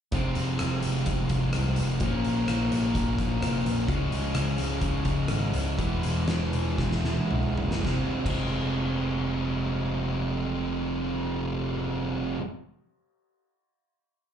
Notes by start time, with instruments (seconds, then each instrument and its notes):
0.12 picked electric bass F1, distorted electric guitar F2 C3 F3 G#3 C4, kick, closed hi-hat
0.35 picked electric bass F1, closed hi-hat
0.59 picked electric bass F1, cross-stick, closed hi-hat
0.83 picked electric bass F1, closed hi-hat
1.06 picked electric bass F1, kick, closed hi-hat
1.29 picked electric bass F1, kick, closed hi-hat
1.53 picked electric bass C2, cross-stick, closed hi-hat
1.76 picked electric bass F1, closed hi-hat
2.00 picked electric bass A#1, distorted electric guitar A#2 F3 A#3 C#4, kick, closed hi-hat
2.24 picked electric bass A#1, closed hi-hat
2.48 picked electric bass A#1, cross-stick, closed hi-hat
2.72 picked electric bass A#1, closed hi-hat
2.95 picked electric bass A#1, kick, closed hi-hat
3.19 picked electric bass A#1, kick, closed hi-hat
3.42 picked electric bass F1, cross-stick, closed hi-hat
3.66 picked electric bass A#1, closed hi-hat
3.88 picked electric bass C#2, distorted electric guitar C#3 F3 G#3 C#4, kick, closed hi-hat
4.12 picked electric bass C#2, closed hi-hat
4.35 picked electric bass C#2, cross-stick, closed hi-hat
4.58 picked electric bass C#2, closed hi-hat
4.81 picked electric bass C#2, kick, closed hi-hat
5.05 picked electric bass C#2, kick, closed hi-hat
5.28 picked electric bass G#1, cross-stick, closed hi-hat
5.54 picked electric bass C#2, closed hi-hat
5.78 picked electric bass E1, distorted electric guitar E3 G#3 B3 E4, kick, closed hi-hat
6.03 picked electric bass E1, closed hi-hat
6.28 picked electric bass E1, snare, closed hi-hat
6.53 picked electric bass E1, closed hi-hat
6.78 picked electric bass E1, kick, snare
6.92 snare
7.04 picked electric bass E1, snare
7.17 mid tom
7.31 picked electric bass B1, mid tom
7.43 mid tom
7.57 picked electric bass F#1, floor tom
7.71 snare
7.83 picked electric bass F1, distorted electric guitar F2 C3 F3 G#3, kick, snare
7.88 distorted electric guitar C4
8.25 picked electric bass F1, distorted electric guitar F2 C3 F3 G#3, kick, crash
8.29 distorted electric guitar C4